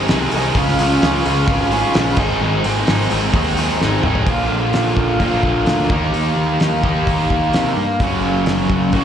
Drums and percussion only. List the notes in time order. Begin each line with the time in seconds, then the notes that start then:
0.08 snare, open hi-hat
0.31 open hi-hat
0.55 kick, open hi-hat
0.68 snare
0.79 open hi-hat
1.02 snare, open hi-hat
1.25 open hi-hat
1.48 kick, open hi-hat
1.72 open hi-hat
1.94 snare, open hi-hat
2.16 kick, crash
2.64 open hi-hat
2.87 snare, open hi-hat
3.11 open hi-hat
3.34 kick, open hi-hat
3.57 open hi-hat
3.81 snare
4.03 mid tom
4.15 floor tom
4.26 kick, open hi-hat
4.73 snare, open hi-hat
4.97 kick
5.20 kick, open hi-hat
5.43 kick
5.66 snare, open hi-hat
5.90 kick
6.14 open hi-hat
6.60 snare, open hi-hat
6.84 kick
7.07 kick, open hi-hat
7.30 kick
7.53 snare, open hi-hat
8.00 kick, open hi-hat
8.46 snare, open hi-hat
8.70 kick
8.92 kick, open hi-hat